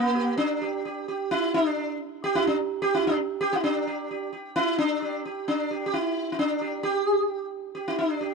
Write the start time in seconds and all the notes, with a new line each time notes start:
Already playing: A#3
0.15 G4
0.37 D4
0.62 G4
0.85 G4
1.08 G4
1.31 E4
1.54 D4
2.24 G4
2.35 E4
2.47 D4
2.82 G4
2.95 E4
3.07 D4
3.41 G4
3.53 E4
3.64 D4 G4
3.87 G4
4.11 G4
4.33 G4
4.56 E4
4.78 D4
5.02 G4
5.25 G4
5.48 D4
5.71 G4
5.86 G4
5.93 E4
6.32 E4
6.39 D4
6.61 G4
6.83 G4
7.75 G4
7.88 E4
7.99 D4
8.21 G4